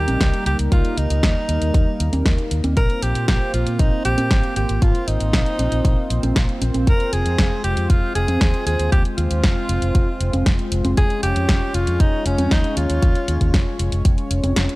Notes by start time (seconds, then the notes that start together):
Already playing: G3 A#3 D#4 G4 A#4
0.08 A#1, closed hi-hat, high conga
0.21 C#2, kick, snare, closed hi-hat
0.34 closed hi-hat
0.46 C#2 G4, closed hi-hat
0.59 C#2, closed hi-hat
0.72 C#2 F4, kick, closed hi-hat
0.85 closed hi-hat
0.97 C#2 D#4, closed hi-hat
1.10 C#2, closed hi-hat
1.23 D#2, kick, snare, closed hi-hat
1.49 D#2, closed hi-hat
1.62 D#2, closed hi-hat
1.74 D#2, kick, closed hi-hat
2.00 D#2, closed hi-hat
2.13 D#2, closed hi-hat, high conga
2.26 D#2, kick, snare, closed hi-hat
2.38 closed hi-hat
2.51 D#2, closed hi-hat
2.64 D#2, closed hi-hat, high conga
2.77 A#1 C4 F4 A#4 C5, kick, closed hi-hat
2.90 closed hi-hat
3.02 A#1 G4, closed hi-hat
3.15 A#2, closed hi-hat
3.28 A#1 G4, kick, snare, closed hi-hat
3.54 A#1 F4, closed hi-hat
3.67 A#2, closed hi-hat
3.79 A#1 D#4, kick, closed hi-hat
4.05 A#1 G4, closed hi-hat
4.18 A#2, closed hi-hat, high conga
4.31 G#1, kick, snare, closed hi-hat
4.44 closed hi-hat
4.56 G#1 G4, closed hi-hat
4.69 G#1, closed hi-hat
4.82 G#1 F4, kick, closed hi-hat
4.95 closed hi-hat
5.08 G#1 D#4, closed hi-hat
5.20 G#1, closed hi-hat
5.33 A#1, kick, snare, closed hi-hat
5.46 closed hi-hat
5.59 A#1, closed hi-hat, high conga
5.72 A#1, closed hi-hat
5.85 A#1, kick, closed hi-hat
6.10 A#1, closed hi-hat
6.23 A#1, closed hi-hat, high conga
6.36 A#1, kick, snare, closed hi-hat
6.49 closed hi-hat
6.62 A#1, closed hi-hat, high conga
6.74 A#1, closed hi-hat, high conga
6.87 F1 G#3 A#4, kick, closed hi-hat
7.00 closed hi-hat
7.13 F1 G#4, closed hi-hat
7.26 F2, closed hi-hat
7.38 F1, kick, snare, closed hi-hat
7.64 F1 G4, closed hi-hat
7.77 F2, closed hi-hat
7.90 F1 F4, kick, closed hi-hat
8.15 F1 G#4, closed hi-hat
8.28 F2, closed hi-hat, high conga
8.41 D#2, kick, snare, closed hi-hat
8.54 closed hi-hat
8.66 D#2 G#4, closed hi-hat
8.79 D#2, closed hi-hat
8.92 D#2 G4, kick, closed hi-hat
9.05 closed hi-hat
9.17 D#2 F4, closed hi-hat
9.31 D#2, closed hi-hat
9.44 F1, kick, snare, closed hi-hat
9.69 F1, closed hi-hat
9.82 F1, closed hi-hat
9.95 F1, kick, closed hi-hat
10.20 F1, closed hi-hat
10.33 F1, closed hi-hat, high conga
10.46 F1, kick, snare, closed hi-hat
10.59 closed hi-hat
10.72 F1, closed hi-hat
10.85 F1, closed hi-hat, high conga
10.97 F1 C#4 G#4 C#5, kick, closed hi-hat
11.10 closed hi-hat
11.23 F1 G4, closed hi-hat
11.36 F2, closed hi-hat
11.49 F1, kick, snare, closed hi-hat
11.74 F1 F4, closed hi-hat
11.87 F2, closed hi-hat
12.00 F1 D#4, kick, closed hi-hat
12.26 F1 C#4, closed hi-hat
12.38 F2, closed hi-hat, high conga
12.51 D#2 D#4, kick, snare, closed hi-hat
12.64 closed hi-hat
12.77 D#2 F4, closed hi-hat
12.90 D#2, closed hi-hat
13.03 D#2, kick, closed hi-hat
13.15 closed hi-hat
13.28 D#2, closed hi-hat
13.41 D#2, kick, closed hi-hat
13.54 F1, kick, snare, closed hi-hat
13.79 F1, closed hi-hat
13.92 F1, closed hi-hat
14.05 F1, kick, closed hi-hat
14.18 closed hi-hat
14.31 F1, closed hi-hat
14.44 F1, closed hi-hat, high conga
14.56 F1, snare, closed hi-hat
14.69 closed hi-hat